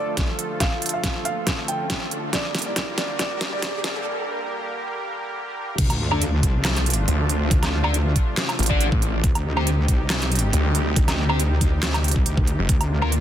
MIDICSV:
0, 0, Header, 1, 9, 480
1, 0, Start_track
1, 0, Tempo, 431655
1, 672, Time_signature, 4, 2, 24, 8
1, 14682, End_track
2, 0, Start_track
2, 0, Title_t, "Grand piano"
2, 0, Program_c, 0, 0
2, 0, Note_on_c, 0, 74, 87
2, 252, Note_off_c, 0, 74, 0
2, 672, Note_on_c, 0, 77, 89
2, 971, Note_off_c, 0, 77, 0
2, 1040, Note_on_c, 0, 77, 84
2, 1332, Note_off_c, 0, 77, 0
2, 1391, Note_on_c, 0, 77, 92
2, 1792, Note_off_c, 0, 77, 0
2, 1872, Note_on_c, 0, 79, 89
2, 2172, Note_off_c, 0, 79, 0
2, 2591, Note_on_c, 0, 74, 89
2, 2891, Note_off_c, 0, 74, 0
2, 2960, Note_on_c, 0, 74, 80
2, 3252, Note_off_c, 0, 74, 0
2, 3311, Note_on_c, 0, 74, 91
2, 3533, Note_off_c, 0, 74, 0
2, 3551, Note_on_c, 0, 74, 95
2, 3851, Note_off_c, 0, 74, 0
2, 3920, Note_on_c, 0, 74, 95
2, 4212, Note_off_c, 0, 74, 0
2, 4271, Note_on_c, 0, 74, 87
2, 4494, Note_off_c, 0, 74, 0
2, 14682, End_track
3, 0, Start_track
3, 0, Title_t, "Distorted electric guitar"
3, 0, Program_c, 1, 30
3, 6798, Note_on_c, 1, 74, 106
3, 6802, Note_on_c, 1, 69, 89
3, 6808, Note_on_c, 1, 62, 99
3, 6902, Note_off_c, 1, 62, 0
3, 6902, Note_off_c, 1, 69, 0
3, 6902, Note_off_c, 1, 74, 0
3, 8717, Note_on_c, 1, 74, 99
3, 8723, Note_on_c, 1, 69, 80
3, 8727, Note_on_c, 1, 62, 77
3, 8821, Note_off_c, 1, 62, 0
3, 8821, Note_off_c, 1, 69, 0
3, 8821, Note_off_c, 1, 74, 0
3, 9678, Note_on_c, 1, 74, 109
3, 9683, Note_on_c, 1, 69, 81
3, 9689, Note_on_c, 1, 62, 92
3, 9850, Note_off_c, 1, 62, 0
3, 9850, Note_off_c, 1, 74, 0
3, 9851, Note_off_c, 1, 69, 0
3, 10637, Note_on_c, 1, 72, 105
3, 10642, Note_on_c, 1, 67, 93
3, 10646, Note_on_c, 1, 60, 84
3, 10741, Note_off_c, 1, 60, 0
3, 10742, Note_off_c, 1, 67, 0
3, 10742, Note_off_c, 1, 72, 0
3, 12558, Note_on_c, 1, 72, 90
3, 12562, Note_on_c, 1, 67, 78
3, 12567, Note_on_c, 1, 60, 75
3, 12662, Note_off_c, 1, 60, 0
3, 12662, Note_off_c, 1, 67, 0
3, 12662, Note_off_c, 1, 72, 0
3, 14477, Note_on_c, 1, 70, 108
3, 14482, Note_on_c, 1, 65, 82
3, 14485, Note_on_c, 1, 58, 87
3, 14581, Note_off_c, 1, 65, 0
3, 14581, Note_off_c, 1, 70, 0
3, 14582, Note_off_c, 1, 58, 0
3, 14682, End_track
4, 0, Start_track
4, 0, Title_t, "Supersaw synth"
4, 0, Program_c, 2, 81
4, 0, Note_on_c, 2, 50, 75
4, 0, Note_on_c, 2, 53, 66
4, 0, Note_on_c, 2, 57, 67
4, 0, Note_on_c, 2, 65, 69
4, 0, Note_on_c, 2, 69, 84
4, 2553, Note_off_c, 2, 53, 0
4, 2553, Note_off_c, 2, 57, 0
4, 2553, Note_off_c, 2, 65, 0
4, 2553, Note_off_c, 2, 69, 0
4, 2591, Note_on_c, 2, 55, 70
4, 2591, Note_on_c, 2, 58, 73
4, 2591, Note_on_c, 2, 67, 72
4, 2591, Note_on_c, 2, 70, 87
4, 6387, Note_off_c, 2, 50, 0
4, 6393, Note_off_c, 2, 55, 0
4, 6393, Note_off_c, 2, 58, 0
4, 6393, Note_off_c, 2, 67, 0
4, 6393, Note_off_c, 2, 70, 0
4, 6431, Note_on_c, 2, 48, 80
4, 6431, Note_on_c, 2, 53, 71
4, 6431, Note_on_c, 2, 57, 72
4, 6431, Note_on_c, 2, 62, 73
4, 6431, Note_on_c, 2, 65, 90
4, 10233, Note_off_c, 2, 53, 0
4, 10233, Note_off_c, 2, 57, 0
4, 10233, Note_off_c, 2, 62, 0
4, 10233, Note_off_c, 2, 65, 0
4, 10271, Note_on_c, 2, 63, 73
4, 10271, Note_on_c, 2, 67, 83
4, 10272, Note_on_c, 2, 55, 69
4, 14073, Note_off_c, 2, 55, 0
4, 14073, Note_off_c, 2, 63, 0
4, 14073, Note_off_c, 2, 67, 0
4, 14112, Note_on_c, 2, 53, 74
4, 14112, Note_on_c, 2, 58, 73
4, 14112, Note_on_c, 2, 62, 71
4, 14112, Note_on_c, 2, 65, 85
4, 14682, Note_off_c, 2, 48, 0
4, 14682, Note_off_c, 2, 53, 0
4, 14682, Note_off_c, 2, 58, 0
4, 14682, Note_off_c, 2, 62, 0
4, 14682, Note_off_c, 2, 65, 0
4, 14682, End_track
5, 0, Start_track
5, 0, Title_t, "Wobble bass"
5, 0, Program_c, 3, 39
5, 6431, Note_on_c, 3, 38, 101
5, 7134, Note_off_c, 3, 38, 0
5, 7151, Note_on_c, 3, 36, 97
5, 7854, Note_off_c, 3, 36, 0
5, 8351, Note_on_c, 3, 38, 99
5, 9054, Note_off_c, 3, 38, 0
5, 10272, Note_on_c, 3, 38, 97
5, 10974, Note_off_c, 3, 38, 0
5, 10992, Note_on_c, 3, 36, 98
5, 11694, Note_off_c, 3, 36, 0
5, 12192, Note_on_c, 3, 38, 99
5, 12894, Note_off_c, 3, 38, 0
5, 12911, Note_on_c, 3, 38, 95
5, 13134, Note_off_c, 3, 38, 0
5, 13152, Note_on_c, 3, 38, 100
5, 13614, Note_off_c, 3, 38, 0
5, 13632, Note_on_c, 3, 38, 97
5, 13980, Note_off_c, 3, 38, 0
5, 14111, Note_on_c, 3, 38, 100
5, 14682, Note_off_c, 3, 38, 0
5, 14682, End_track
6, 0, Start_track
6, 0, Title_t, "Detuned saw bass"
6, 0, Program_c, 4, 39
6, 7871, Note_on_c, 4, 38, 103
6, 8334, Note_off_c, 4, 38, 0
6, 9552, Note_on_c, 4, 33, 107
6, 10254, Note_off_c, 4, 33, 0
6, 11712, Note_on_c, 4, 38, 98
6, 12174, Note_off_c, 4, 38, 0
6, 14000, Note_on_c, 4, 29, 101
6, 14094, Note_off_c, 4, 29, 0
6, 14682, End_track
7, 0, Start_track
7, 0, Title_t, "Riser"
7, 0, Program_c, 5, 103
7, 0, Note_on_c, 5, 60, 76
7, 4512, Note_off_c, 5, 60, 0
7, 14682, End_track
8, 0, Start_track
8, 0, Title_t, "Sub drop"
8, 0, Program_c, 6, 103
8, 6431, Note_on_c, 6, 60, 76
8, 8352, Note_off_c, 6, 60, 0
8, 14682, End_track
9, 0, Start_track
9, 0, Title_t, "Drums"
9, 191, Note_on_c, 9, 36, 101
9, 191, Note_on_c, 9, 38, 53
9, 191, Note_on_c, 9, 42, 82
9, 302, Note_off_c, 9, 38, 0
9, 302, Note_off_c, 9, 42, 0
9, 303, Note_off_c, 9, 36, 0
9, 431, Note_on_c, 9, 42, 53
9, 542, Note_off_c, 9, 42, 0
9, 671, Note_on_c, 9, 36, 99
9, 671, Note_on_c, 9, 38, 56
9, 671, Note_on_c, 9, 42, 74
9, 782, Note_off_c, 9, 38, 0
9, 782, Note_off_c, 9, 42, 0
9, 783, Note_off_c, 9, 36, 0
9, 911, Note_on_c, 9, 42, 48
9, 954, Note_off_c, 9, 42, 0
9, 954, Note_on_c, 9, 42, 62
9, 991, Note_off_c, 9, 42, 0
9, 991, Note_on_c, 9, 42, 78
9, 1103, Note_off_c, 9, 42, 0
9, 1151, Note_on_c, 9, 36, 99
9, 1151, Note_on_c, 9, 38, 61
9, 1151, Note_on_c, 9, 42, 76
9, 1263, Note_off_c, 9, 36, 0
9, 1263, Note_off_c, 9, 38, 0
9, 1263, Note_off_c, 9, 42, 0
9, 1392, Note_on_c, 9, 42, 51
9, 1503, Note_off_c, 9, 42, 0
9, 1631, Note_on_c, 9, 36, 98
9, 1632, Note_on_c, 9, 38, 63
9, 1632, Note_on_c, 9, 42, 76
9, 1743, Note_off_c, 9, 36, 0
9, 1743, Note_off_c, 9, 38, 0
9, 1743, Note_off_c, 9, 42, 0
9, 1871, Note_on_c, 9, 42, 54
9, 1983, Note_off_c, 9, 42, 0
9, 2111, Note_on_c, 9, 36, 101
9, 2111, Note_on_c, 9, 38, 70
9, 2111, Note_on_c, 9, 42, 77
9, 2222, Note_off_c, 9, 36, 0
9, 2222, Note_off_c, 9, 38, 0
9, 2222, Note_off_c, 9, 42, 0
9, 2351, Note_on_c, 9, 42, 52
9, 2462, Note_off_c, 9, 42, 0
9, 2591, Note_on_c, 9, 36, 103
9, 2591, Note_on_c, 9, 38, 72
9, 2591, Note_on_c, 9, 42, 73
9, 2702, Note_off_c, 9, 36, 0
9, 2702, Note_off_c, 9, 38, 0
9, 2702, Note_off_c, 9, 42, 0
9, 2831, Note_on_c, 9, 38, 74
9, 2831, Note_on_c, 9, 42, 49
9, 2874, Note_off_c, 9, 42, 0
9, 2874, Note_on_c, 9, 42, 61
9, 2911, Note_off_c, 9, 42, 0
9, 2911, Note_on_c, 9, 42, 75
9, 2942, Note_off_c, 9, 38, 0
9, 3022, Note_off_c, 9, 42, 0
9, 3071, Note_on_c, 9, 36, 98
9, 3071, Note_on_c, 9, 38, 77
9, 3071, Note_on_c, 9, 42, 78
9, 3182, Note_off_c, 9, 36, 0
9, 3182, Note_off_c, 9, 38, 0
9, 3182, Note_off_c, 9, 42, 0
9, 3311, Note_on_c, 9, 38, 75
9, 3311, Note_on_c, 9, 42, 52
9, 3422, Note_off_c, 9, 38, 0
9, 3422, Note_off_c, 9, 42, 0
9, 3551, Note_on_c, 9, 36, 102
9, 3551, Note_on_c, 9, 38, 80
9, 3551, Note_on_c, 9, 42, 75
9, 3662, Note_off_c, 9, 36, 0
9, 3662, Note_off_c, 9, 38, 0
9, 3662, Note_off_c, 9, 42, 0
9, 3791, Note_on_c, 9, 38, 87
9, 3791, Note_on_c, 9, 42, 52
9, 3902, Note_off_c, 9, 38, 0
9, 3902, Note_off_c, 9, 42, 0
9, 4031, Note_on_c, 9, 36, 102
9, 4031, Note_on_c, 9, 38, 88
9, 4031, Note_on_c, 9, 42, 78
9, 4142, Note_off_c, 9, 36, 0
9, 4142, Note_off_c, 9, 38, 0
9, 4142, Note_off_c, 9, 42, 0
9, 4271, Note_on_c, 9, 38, 92
9, 4271, Note_on_c, 9, 42, 52
9, 4382, Note_off_c, 9, 38, 0
9, 4382, Note_off_c, 9, 42, 0
9, 6431, Note_on_c, 9, 36, 127
9, 6432, Note_on_c, 9, 42, 85
9, 6432, Note_on_c, 9, 49, 105
9, 6543, Note_off_c, 9, 36, 0
9, 6543, Note_off_c, 9, 42, 0
9, 6543, Note_off_c, 9, 49, 0
9, 6560, Note_on_c, 9, 42, 55
9, 6560, Note_on_c, 9, 77, 51
9, 6672, Note_off_c, 9, 42, 0
9, 6672, Note_off_c, 9, 77, 0
9, 6801, Note_on_c, 9, 77, 76
9, 6912, Note_off_c, 9, 77, 0
9, 6912, Note_on_c, 9, 42, 85
9, 7023, Note_off_c, 9, 42, 0
9, 7151, Note_on_c, 9, 36, 61
9, 7152, Note_on_c, 9, 42, 55
9, 7263, Note_off_c, 9, 36, 0
9, 7263, Note_off_c, 9, 42, 0
9, 7392, Note_on_c, 9, 38, 119
9, 7392, Note_on_c, 9, 39, 90
9, 7392, Note_on_c, 9, 42, 81
9, 7392, Note_on_c, 9, 77, 59
9, 7503, Note_off_c, 9, 38, 0
9, 7503, Note_off_c, 9, 39, 0
9, 7503, Note_off_c, 9, 42, 0
9, 7503, Note_off_c, 9, 77, 0
9, 7520, Note_on_c, 9, 42, 39
9, 7631, Note_off_c, 9, 42, 0
9, 7632, Note_on_c, 9, 42, 57
9, 7675, Note_off_c, 9, 42, 0
9, 7675, Note_on_c, 9, 42, 69
9, 7712, Note_off_c, 9, 42, 0
9, 7712, Note_on_c, 9, 42, 93
9, 7823, Note_off_c, 9, 42, 0
9, 7872, Note_on_c, 9, 42, 88
9, 7983, Note_off_c, 9, 42, 0
9, 8111, Note_on_c, 9, 42, 54
9, 8223, Note_off_c, 9, 42, 0
9, 8351, Note_on_c, 9, 36, 124
9, 8351, Note_on_c, 9, 42, 78
9, 8463, Note_off_c, 9, 36, 0
9, 8463, Note_off_c, 9, 42, 0
9, 8481, Note_on_c, 9, 38, 38
9, 8481, Note_on_c, 9, 42, 53
9, 8481, Note_on_c, 9, 77, 50
9, 8592, Note_off_c, 9, 38, 0
9, 8592, Note_off_c, 9, 42, 0
9, 8592, Note_off_c, 9, 77, 0
9, 8721, Note_on_c, 9, 77, 79
9, 8831, Note_on_c, 9, 42, 80
9, 8832, Note_off_c, 9, 77, 0
9, 8942, Note_off_c, 9, 42, 0
9, 9071, Note_on_c, 9, 42, 53
9, 9072, Note_on_c, 9, 36, 64
9, 9182, Note_off_c, 9, 42, 0
9, 9183, Note_off_c, 9, 36, 0
9, 9312, Note_on_c, 9, 38, 121
9, 9312, Note_on_c, 9, 39, 92
9, 9312, Note_on_c, 9, 42, 76
9, 9423, Note_off_c, 9, 38, 0
9, 9423, Note_off_c, 9, 39, 0
9, 9423, Note_off_c, 9, 42, 0
9, 9440, Note_on_c, 9, 42, 39
9, 9440, Note_on_c, 9, 77, 76
9, 9552, Note_off_c, 9, 42, 0
9, 9552, Note_off_c, 9, 77, 0
9, 9552, Note_on_c, 9, 42, 53
9, 9595, Note_off_c, 9, 42, 0
9, 9595, Note_on_c, 9, 42, 68
9, 9632, Note_off_c, 9, 42, 0
9, 9632, Note_on_c, 9, 42, 87
9, 9681, Note_on_c, 9, 36, 63
9, 9743, Note_off_c, 9, 42, 0
9, 9792, Note_off_c, 9, 36, 0
9, 9792, Note_on_c, 9, 42, 80
9, 9903, Note_off_c, 9, 42, 0
9, 9920, Note_on_c, 9, 36, 109
9, 10032, Note_off_c, 9, 36, 0
9, 10032, Note_on_c, 9, 42, 56
9, 10143, Note_off_c, 9, 42, 0
9, 10272, Note_on_c, 9, 36, 127
9, 10272, Note_on_c, 9, 42, 75
9, 10383, Note_off_c, 9, 36, 0
9, 10383, Note_off_c, 9, 42, 0
9, 10401, Note_on_c, 9, 42, 52
9, 10401, Note_on_c, 9, 77, 51
9, 10512, Note_off_c, 9, 42, 0
9, 10512, Note_off_c, 9, 77, 0
9, 10641, Note_on_c, 9, 77, 80
9, 10751, Note_on_c, 9, 42, 80
9, 10752, Note_off_c, 9, 77, 0
9, 10863, Note_off_c, 9, 42, 0
9, 10991, Note_on_c, 9, 42, 54
9, 10992, Note_on_c, 9, 36, 64
9, 11103, Note_off_c, 9, 36, 0
9, 11103, Note_off_c, 9, 42, 0
9, 11231, Note_on_c, 9, 38, 126
9, 11231, Note_on_c, 9, 39, 93
9, 11231, Note_on_c, 9, 42, 78
9, 11231, Note_on_c, 9, 77, 57
9, 11342, Note_off_c, 9, 38, 0
9, 11342, Note_off_c, 9, 39, 0
9, 11342, Note_off_c, 9, 42, 0
9, 11342, Note_off_c, 9, 77, 0
9, 11360, Note_on_c, 9, 42, 38
9, 11471, Note_off_c, 9, 42, 0
9, 11471, Note_on_c, 9, 42, 52
9, 11514, Note_off_c, 9, 42, 0
9, 11514, Note_on_c, 9, 42, 68
9, 11551, Note_off_c, 9, 42, 0
9, 11551, Note_on_c, 9, 42, 86
9, 11662, Note_off_c, 9, 42, 0
9, 11711, Note_on_c, 9, 42, 77
9, 11823, Note_off_c, 9, 42, 0
9, 11952, Note_on_c, 9, 42, 54
9, 12063, Note_off_c, 9, 42, 0
9, 12192, Note_on_c, 9, 36, 127
9, 12192, Note_on_c, 9, 42, 78
9, 12303, Note_off_c, 9, 36, 0
9, 12303, Note_off_c, 9, 42, 0
9, 12320, Note_on_c, 9, 38, 38
9, 12320, Note_on_c, 9, 42, 53
9, 12320, Note_on_c, 9, 77, 53
9, 12432, Note_off_c, 9, 38, 0
9, 12432, Note_off_c, 9, 42, 0
9, 12432, Note_off_c, 9, 77, 0
9, 12561, Note_on_c, 9, 77, 77
9, 12672, Note_off_c, 9, 77, 0
9, 12672, Note_on_c, 9, 42, 77
9, 12783, Note_off_c, 9, 42, 0
9, 12911, Note_on_c, 9, 36, 66
9, 12912, Note_on_c, 9, 42, 50
9, 13023, Note_off_c, 9, 36, 0
9, 13023, Note_off_c, 9, 42, 0
9, 13152, Note_on_c, 9, 38, 121
9, 13152, Note_on_c, 9, 39, 89
9, 13152, Note_on_c, 9, 42, 76
9, 13263, Note_off_c, 9, 38, 0
9, 13263, Note_off_c, 9, 39, 0
9, 13263, Note_off_c, 9, 42, 0
9, 13280, Note_on_c, 9, 42, 35
9, 13280, Note_on_c, 9, 77, 81
9, 13392, Note_off_c, 9, 42, 0
9, 13392, Note_off_c, 9, 77, 0
9, 13392, Note_on_c, 9, 42, 50
9, 13434, Note_off_c, 9, 42, 0
9, 13434, Note_on_c, 9, 42, 69
9, 13471, Note_off_c, 9, 42, 0
9, 13471, Note_on_c, 9, 42, 81
9, 13520, Note_on_c, 9, 36, 66
9, 13583, Note_off_c, 9, 42, 0
9, 13632, Note_off_c, 9, 36, 0
9, 13632, Note_on_c, 9, 42, 79
9, 13743, Note_off_c, 9, 42, 0
9, 13760, Note_on_c, 9, 36, 103
9, 13871, Note_on_c, 9, 42, 54
9, 13872, Note_off_c, 9, 36, 0
9, 13982, Note_off_c, 9, 42, 0
9, 14111, Note_on_c, 9, 36, 120
9, 14111, Note_on_c, 9, 42, 77
9, 14222, Note_off_c, 9, 42, 0
9, 14223, Note_off_c, 9, 36, 0
9, 14241, Note_on_c, 9, 42, 53
9, 14241, Note_on_c, 9, 77, 57
9, 14352, Note_off_c, 9, 42, 0
9, 14352, Note_off_c, 9, 77, 0
9, 14481, Note_on_c, 9, 77, 84
9, 14592, Note_off_c, 9, 77, 0
9, 14592, Note_on_c, 9, 42, 76
9, 14682, Note_off_c, 9, 42, 0
9, 14682, End_track
0, 0, End_of_file